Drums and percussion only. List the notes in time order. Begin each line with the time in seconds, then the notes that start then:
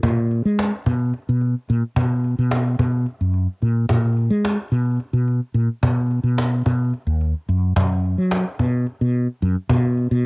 0.03 cajon bass
0.31 cajon slap
0.59 cajon slap
0.86 cajon bass
1.14 cajon slap
1.41 cajon slap
1.69 cajon slap
1.96 cajon bass
2.24 cajon slap
2.51 cajon slap
2.79 cajon bass
3.06 cajon slap
3.34 cajon slap
3.62 cajon slap
3.89 cajon bass
4.17 cajon slap
4.45 cajon slap
4.73 cajon slap
5.00 cajon slap
5.28 cajon slap
5.55 cajon slap
5.83 cajon bass
6.11 cajon slap
6.38 cajon slap
6.66 cajon bass, cajon slap
6.94 cajon slap
7.21 cajon slap
7.49 cajon slap
7.76 cajon bass
8.04 cajon slap
8.31 cajon slap
8.59 cajon bass
8.87 cajon slap
9.15 cajon slap
9.42 cajon slap
9.70 cajon bass
9.97 cajon slap